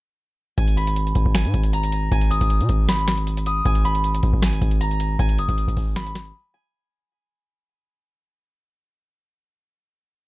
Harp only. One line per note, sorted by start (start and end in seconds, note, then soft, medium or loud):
0.58 1.34 G#5 medium
0.77 1.79 B5 medium
1.35 2.11 G#5 medium
1.73 2.95 A#5 medium
2.12 3.62 G#5 loud
2.31 3.46 D#6 medium
2.89 3.84 B5 medium
3.46 4.64 D#6 medium
3.66 4.42 G#5 medium
3.85 4.87 B5 medium
4.43 5.19 G#5 medium
4.81 6.02 A#5 medium
5.19 6.54 G#5 medium
5.39 6.56 D#6 medium
5.96 7.31 B5 medium
6.54 8.04 G#5 medium